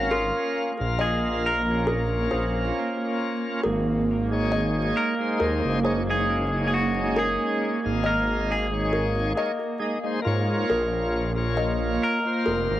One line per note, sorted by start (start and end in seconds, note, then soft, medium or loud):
0.00 0.31 G#1 loud
0.00 0.72 A#3 medium
0.00 10.68 A#3 medium
0.00 0.74 C#4 loud
0.00 0.11 F#4 medium
0.00 0.73 F5 medium
0.11 1.02 F4 medium
0.11 0.95 A#4 medium
0.79 2.28 A#1 loud
0.79 1.61 A#3 medium
0.79 1.62 F4 medium
0.79 1.62 F5 medium
0.99 1.41 G#4 medium
0.99 1.26 D#5 medium
1.46 2.73 A#4 medium
1.66 3.61 A#3 medium
1.66 3.62 F4 medium
1.71 3.63 C#4 medium
1.87 2.29 A#4 medium
2.31 2.71 A#1 loud
2.31 2.73 C5 medium
3.63 4.93 G#1 loud
3.63 4.48 A#4 medium
4.31 5.14 G#3 medium
4.31 5.15 D#4 medium
4.31 5.15 C#5 medium
4.52 4.79 D#5 medium
4.97 6.10 A#4 loud
5.19 5.79 G#3 loud
5.19 5.79 D#4 medium
5.19 5.80 C5 loud
5.40 5.61 D#2 medium
5.40 5.82 A#4 medium
5.65 7.36 F#1 loud
5.83 6.02 G#3 medium
5.83 6.03 D#4 medium
5.83 6.27 C5 medium
5.83 6.03 C#5 medium
6.07 7.78 G#3 medium
6.07 7.79 D#4 medium
6.07 6.63 G#4 loud
6.11 7.81 C#4 loud
6.67 6.73 G#4 medium
6.74 7.18 F#4 medium
7.16 8.02 G#4 loud
7.16 8.01 A#4 medium
7.83 9.34 G#1 loud
7.83 8.67 G#3 medium
7.83 8.67 D#4 medium
7.83 8.68 F5 medium
8.04 8.51 A#4 loud
8.04 8.31 D#5 medium
8.52 9.79 G#4 medium
8.71 9.32 G#3 medium
8.71 9.33 D#4 medium
8.71 9.33 C#5 medium
8.93 9.35 A#4 medium
9.35 9.51 G#3 medium
9.35 9.52 D#4 medium
9.35 9.53 C#5 medium
9.35 9.79 D#5 medium
9.80 9.99 G#3 medium
9.80 9.99 D#4 medium
9.80 10.00 D#5 medium
10.04 10.20 G#3 medium
10.04 10.20 D#4 medium
10.04 10.21 C5 loud
10.22 11.30 A#3 medium
10.22 11.32 F4 medium
10.26 10.65 G#2 medium
10.26 11.33 C#5 loud
10.69 11.98 A#1 medium
10.69 12.80 A#3 medium
10.69 11.54 A#4 medium
11.36 12.19 A#3 medium
11.36 12.19 F4 medium
11.36 12.20 C#5 medium
11.57 11.84 D#5 medium
12.03 12.80 A#4 loud
12.24 12.80 A#3 loud
12.24 12.80 F4 medium
12.24 12.80 C5 loud
12.46 12.68 F1 medium
12.46 12.80 A#4 medium
12.70 12.80 G#1 medium